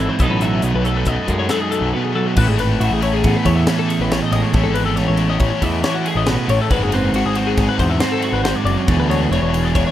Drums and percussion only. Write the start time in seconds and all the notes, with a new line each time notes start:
0.19 kick, closed hi-hat
0.41 snare, closed hi-hat
0.62 closed hi-hat
0.85 closed hi-hat
1.05 kick, snare, closed hi-hat
1.28 kick, closed hi-hat
1.49 snare, closed hi-hat
1.72 closed hi-hat
2.36 kick, crash
2.59 snare, ride
2.81 ride
3.02 ride
3.24 kick, ride
3.45 kick, snare, ride
3.67 snare, ride
3.90 snare, ride
4.11 snare, ride
4.32 ride
4.54 kick, ride
4.75 ride
4.97 snare, ride
5.17 ride
5.40 kick, ride
5.62 kick, ride
5.84 snare, ride
6.06 ride
6.26 snare, ride
6.49 ride
6.70 kick, crash
6.92 snare, ride
7.14 ride
7.35 ride
7.57 kick, snare, ride
7.79 kick, snare, ride
8.00 snare, ride
8.22 ride
8.45 snare, ride
8.66 ride
8.88 kick, ride
9.11 snare, ride
9.32 snare, ride
9.54 ride
9.75 kick, ride